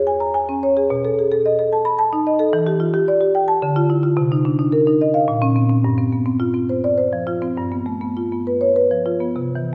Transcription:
Already playing: E2 G#4
0.07 G#5
0.20 A#5
0.34 G#5
0.49 C#4
0.63 C#5
0.77 G#4
0.90 B2
1.05 A4
1.19 G#4
1.32 A4
1.46 D#5
1.59 A4
1.73 A5
1.85 B5
1.99 A5
2.13 D#4
2.27 D#5
2.39 A4
2.53 E3
2.67 G4
2.80 F4
2.94 G4
3.08 D5
3.21 G4
3.35 G5
3.48 A5
3.62 D3
3.76 F4
3.90 E4
4.03 F4
4.17 C3
4.32 D#4
4.45 D4
4.59 D#4
4.72 A#4
4.87 D#4
5.01 D#5
5.14 F5
5.28 A#2
5.42 C#4
5.56 C4
5.69 C#4
5.84 G2
5.98 C4
6.12 B3
6.26 C4
6.40 F4
6.54 C4
6.69 C5
6.84 D5
6.98 C5
7.13 F3
7.27 F4
7.42 C4
7.57 G2
7.72 B3
7.86 A3
8.01 B3
8.17 F4
8.32 B3
8.47 B4
8.61 C#5
8.76 B4
8.91 F3
9.06 F4
9.20 B3
9.36 C3
9.55 E3

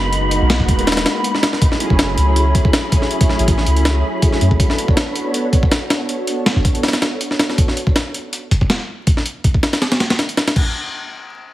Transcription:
Already playing: F#1 G#3 B3 D#4 F#4 A#4 B5
0.12 G#3 A#3 B3 D#4 F#4, closed hi-hat
0.31 closed hi-hat
0.41 B1
0.50 snare, closed hi-hat
0.60 kick
0.68 D#1 G#3 A#3 B3 D#4 F#4, kick, closed hi-hat
0.79 closed hi-hat
0.87 snare, closed hi-hat
0.92 snare, closed hi-hat
0.97 snare, closed hi-hat
1.06 snare, closed hi-hat
1.24 closed hi-hat
1.35 snare
1.43 G#3 B3 D#4 F#4 A#4, snare, closed hi-hat
1.53 snare
1.61 F#3 A3 C#4 E4 G#4, kick, closed hi-hat
1.72 snare
1.80 closed hi-hat
1.90 F#1, kick
1.99 snare, closed hi-hat
2.17 C#2 F#3 A3 C#4 E4 G#4, closed hi-hat
2.36 closed hi-hat
2.55 kick, closed hi-hat
2.65 kick
2.73 snare, closed hi-hat
2.92 F#3 A3 C#4 E4 G#4, kick, closed hi-hat
3.02 snare
3.10 F#3 A3 C#4 E4 G#4, closed hi-hat
3.21 kick, closed hi-hat
3.29 snare
3.39 A1, closed hi-hat
3.48 kick, closed hi-hat
3.58 snare
3.66 C#2 F#3 A3 C#4 E4 G#4, closed hi-hat
3.77 closed hi-hat
3.85 snare, closed hi-hat
4.22 F#3 A3 C#4 E4 G#4, kick, closed hi-hat
4.32 snare
4.41 F#2, closed hi-hat
4.51 C#2, kick
4.59 B3 D4 F#4 A4 C#5, kick, closed hi-hat
4.70 snare
4.78 closed hi-hat
4.88 kick
4.97 snare, closed hi-hat
5.15 B3 D4 F#4 A4 C#5, closed hi-hat
5.34 closed hi-hat
5.53 kick, closed hi-hat
5.63 kick
5.72 snare, closed hi-hat
5.90 B3 D4 F#4 A4 C#5, snare, closed hi-hat
6.09 B3 D4 F#4 A4 C#5, closed hi-hat
6.27 closed hi-hat
6.46 snare, closed hi-hat
6.56 kick
6.64 B3 D4 F#4 A4 C#5, kick, closed hi-hat
6.75 closed hi-hat
6.83 snare, closed hi-hat
6.88 snare, closed hi-hat
6.93 snare, closed hi-hat
7.02 snare, closed hi-hat
7.21 closed hi-hat
7.31 snare
7.39 B3 D4 F#4 A4 C#5, snare, closed hi-hat
7.50 snare
7.58 kick, closed hi-hat
7.68 snare
7.77 closed hi-hat
7.87 kick
7.96 snare, closed hi-hat
8.14 closed hi-hat
8.33 closed hi-hat
8.51 kick, closed hi-hat
8.61 kick
8.70 snare, closed hi-hat
9.07 kick, closed hi-hat
9.17 snare
9.26 closed hi-hat
9.44 kick, closed hi-hat
9.54 kick
9.63 snare, closed hi-hat
9.73 snare, closed hi-hat
9.82 snare, closed hi-hat
9.92 snare, closed hi-hat
10.00 snare, closed hi-hat
10.10 snare, closed hi-hat
10.19 snare, closed hi-hat
10.29 closed hi-hat
10.37 snare, closed hi-hat
10.48 snare, closed hi-hat
10.56 kick, crash

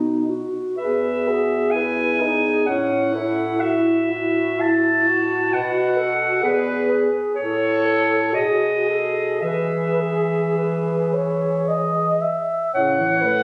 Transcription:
Already playing: B2 B3 D#4
0.29 F#4
0.78 E2 G#4 B4 E5
1.27 F#4 G#4
1.71 E4 G#5
1.75 B4
2.20 D#4 G#4
2.66 A2 C#4 C#5 F#5
3.12 E4 A4
3.60 E4 F#4 E5
4.10 E4 F#4
4.59 E4 F#4 A5
5.07 F#4
5.52 B2 B4 F#5
5.97 A4
6.42 E2 G#4 B4
6.90 G#4
7.35 A2 A4 C#5
7.85 A4
8.32 B2 F#4 G#4 D#5
8.84 G#4
8.89 A4
9.39 E3 G#4 E5
9.44 B4
10.00 G#4
10.57 B4
11.13 C#5
11.68 D#5
12.21 E5
12.74 A2 C#3 C#5 F#5
12.99 E3
13.21 A3 B4

